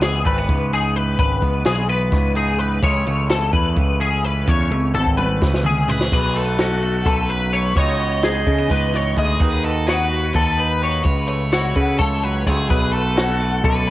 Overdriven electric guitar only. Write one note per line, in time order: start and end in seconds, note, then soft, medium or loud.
5.90 6.13 G#4 medium
6.14 6.37 G#4 medium
6.37 7.08 A4 medium
7.09 7.78 B4 medium
7.78 9.17 D#5 loud
9.18 9.40 G#4 medium
9.41 9.63 G#4 medium
9.65 9.88 A4 medium
9.88 10.32 B4 loud
10.34 11.04 B4 medium
11.04 11.27 C#5 medium
11.28 11.76 C#5 medium
11.76 11.98 B4 medium
11.99 12.43 C#5 medium
12.47 12.68 G#4 medium
12.69 12.92 G#4 medium
12.93 13.65 A4 medium
13.66 13.90 B4 medium